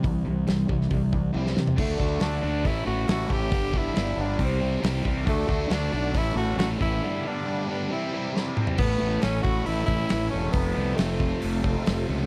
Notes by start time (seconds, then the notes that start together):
0.03 C2 C3 E3 G3, kick, open hi-hat
0.25 C2 C3 E3 G3
0.47 C2 C3 E3 G3, snare, open hi-hat
0.69 C2 C3 E3 G3, kick
0.81 snare
0.91 C2 C3 E3 G3, kick, open hi-hat
1.12 C3 E3 G3, kick
1.33 C2 C3 E3 G3 C4, high tom
1.47 snare
1.55 C3 E3 G3, snare
1.67 floor tom
1.76 D2 D3 A3 D4 F#4, kick, crash
1.99 D2 D3 A3 D4 F#4, kick
2.20 D2 D3 A3 D4 F#4, snare, open hi-hat
2.42 D2 D3 A3 D4 F#4
2.64 A1 A2 E3 A3 C#4 E4, kick, open hi-hat
2.85 A1 A2 E3 A3 C#4 E4 F#4
3.07 A1 A2 E3 A3 C#4 E4 F#4, snare, open hi-hat
3.28 A1 A2 E3 A3 C#4 E4, kick
3.33 G4
3.50 G1 G2 D3 G3 B3 D4 G4, kick, open hi-hat
3.72 G2 D3 G3 B3 D4 G4, kick
3.77 E4
3.95 G1 G2 D3 G3 B3 D4 G4, snare, open hi-hat
4.16 G1 G2 D3 G3 B3 D4 G4
4.21 D4
4.38 C2 C3 E3 G3 C4 G4, kick, open hi-hat
4.45 C4
4.60 C3 E3 G3 C4 G4
4.82 C2 C3 E3 G3 C4 G4, snare, open hi-hat
5.03 C2 C3 E3 G3 C4 G4, kick
5.26 D2 D3 A3 D4 F#4 A4, kick, open hi-hat
5.48 D2 D3 A3 D4 F#4, kick
5.70 D2 D3 A3 D4 F#4, snare, open hi-hat
5.92 B1 D3 A3 D4 F#4
6.13 A1 A2 E3 A3 C#4 E4 A4, kick, open hi-hat
6.17 E4
6.35 A1 A2 E3 A3 C#4 F#4 A4
6.57 A1 A2 E3 A3 C#4 F#4 A4, snare, open hi-hat
6.80 A1 A2 E3 A3 C#4 E4 A4, kick
7.02 G2 D3 G3 A3 B3 D4 G4
7.24 G2 D3 G3 B3 D4 G4
7.45 G2 D3 G3 B3 D4 G4
7.67 G2 D3 G3 B3 D4 G4
7.88 C3 E3 G3 C4 E4 G4
8.11 C3 E3 G3 C4 E4 G4
8.33 C3 E3 G3 E4 G4, snare
8.37 C4
8.56 C3 E3 G3 C4 E4 G4, mid tom
8.67 floor tom
8.77 A1 A2 A3 B3 C#4 E4 A4, kick, crash
8.81 E3 A3
8.99 A1 A3
9.22 A1 C#4, snare, open hi-hat
9.43 A1 E4 F#4, kick
9.66 A1 A3 E4, open hi-hat
9.85 A1 C#4 E4, kick
10.09 A1 E3, snare, open hi-hat
10.30 E1 A3 C#4
10.50 F1 F2 A3 B3 F4 A4, kick, open hi-hat
10.55 C3 F3
10.75 C2 A3
10.96 F1 A3 C4, snare, open hi-hat
11.19 F4, kick
11.40 F1 A3, open hi-hat
11.62 C4, kick
11.85 F1 F3, snare, open hi-hat
12.09 C#2 A3